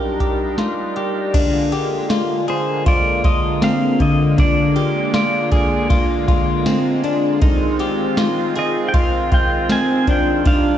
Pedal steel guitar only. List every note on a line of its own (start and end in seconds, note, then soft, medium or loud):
2.50 2.88 C5 medium
2.88 3.26 D5 medium
3.25 3.63 D#5 medium
3.64 4.01 F5 loud
4.02 4.40 D#5 loud
4.40 5.14 D5 loud
5.16 6.63 D5 medium
8.59 8.89 D#5 medium
8.89 8.95 G5 medium
8.96 9.34 F5 medium
9.34 9.71 G5 loud
9.72 10.06 G#5 loud
10.10 10.47 G5 medium
10.47 10.78 F5 medium